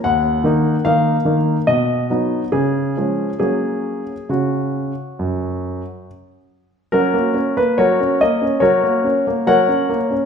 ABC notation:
X:1
M:4/4
L:1/16
Q:1/4=70
K:F#
V:1 name="Grand piano"
f4 e4 d4 G4 | G4 F8 z4 | [CFA]3 B [FAc]2 d2 [FAc]4 [Acf]4 |]
V:2 name="Grand piano"
D,,2 [D,A,D]2 [D,A,D]2 [D,A,D]2 B,,2 [F,B,D]2 C,2 [E,G,C]2 | [F,A,C]4 C,4 F,,4 z4 | F, A, C A, F, C A, C F, A, C A, F, C A, C |]